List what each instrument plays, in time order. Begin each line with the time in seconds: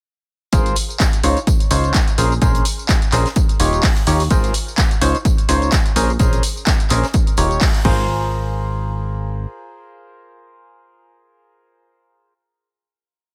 0.52 analog synth bass G#1, synth stab F4 G#4 A#4 C5, kick, closed hi-hat, tambourine
0.66 closed hi-hat, tambourine
0.76 open hi-hat, tambourine
0.90 tambourine
1.00 kick, snare, clap, closed hi-hat, tambourine
1.13 closed hi-hat, tambourine
1.23 analog synth bass C#2, synth stab D#4 F4 C5 C#5, open hi-hat, tambourine
1.37 closed hi-hat, tambourine
1.47 kick, closed hi-hat, tambourine
1.60 closed hi-hat, tambourine
1.70 analog synth bass C#2, synth stab D#4 F4 C5 C#5, open hi-hat, tambourine
1.84 closed hi-hat, tambourine
1.94 kick, snare, clap, closed hi-hat, tambourine
2.08 closed hi-hat, tambourine
2.18 analog synth bass A#1, synth stab C#4 G#4 A#4 C5, open hi-hat, tambourine
2.32 tambourine
2.42 analog synth bass A#1, synth stab C#4 G#4 A#4 C5, kick, closed hi-hat, tambourine
2.55 closed hi-hat, tambourine
2.65 open hi-hat, tambourine
2.79 tambourine
2.89 kick, snare, clap, closed hi-hat, tambourine
3.02 closed hi-hat, tambourine
3.12 analog synth bass A#1, synth stab C#4 G#4 A#4 C5, clap, open hi-hat, tambourine
3.26 snare, closed hi-hat, tambourine
3.36 kick, closed hi-hat, tambourine
3.49 closed hi-hat, tambourine
3.60 analog synth bass D#1, synth stab D#4 F4 G4 C#5, open hi-hat, tambourine
3.73 closed hi-hat, tambourine
3.83 kick, snare, clap, closed hi-hat, open hi-hat, tambourine
3.96 closed hi-hat, tambourine
4.07 analog synth bass D#2, synth stab D#4 F4 G4 C#5, open hi-hat, tambourine
4.20 snare, open hi-hat, tambourine
4.31 analog synth bass G#1, synth stab F4 G#4 A#4 C5, kick, closed hi-hat, tambourine
4.44 closed hi-hat, tambourine
4.54 open hi-hat, tambourine
4.68 tambourine
4.78 kick, snare, clap, closed hi-hat, tambourine
4.91 closed hi-hat, tambourine
5.01 analog synth bass C#2, synth stab D#4 F4 C5 C#5, open hi-hat, tambourine
5.15 closed hi-hat, tambourine
5.25 kick, closed hi-hat, tambourine
5.38 closed hi-hat, tambourine
5.49 analog synth bass C#2, synth stab D#4 F4 C5 C#5, open hi-hat, tambourine
5.62 closed hi-hat, tambourine
5.72 kick, snare, clap, closed hi-hat, tambourine
5.86 closed hi-hat, tambourine
5.96 analog synth bass A#1, synth stab C#4 G#4 A#4 C5, open hi-hat, tambourine
6.10 tambourine
6.19 analog synth bass A#1, synth stab C#4 G#4 A#4 C5, kick, closed hi-hat, tambourine
6.33 closed hi-hat, tambourine
6.43 open hi-hat, tambourine
6.57 tambourine
6.66 kick, snare, clap, closed hi-hat, tambourine
6.80 closed hi-hat, tambourine
6.90 analog synth bass A#1, synth stab C#4 G#4 A#4 C5, clap, open hi-hat, tambourine
7.03 snare, closed hi-hat, tambourine
7.14 kick, closed hi-hat, tambourine
7.27 closed hi-hat, tambourine
7.37 analog synth bass D#1, synth stab D#4 F4 G4 C#5, open hi-hat, tambourine
7.51 closed hi-hat, tambourine
7.61 kick, snare, clap, closed hi-hat, open hi-hat, tambourine
7.75 closed hi-hat, tambourine
7.85 analog synth bass G#1, synth stab F4 G#4 A#4 C5, kick, crash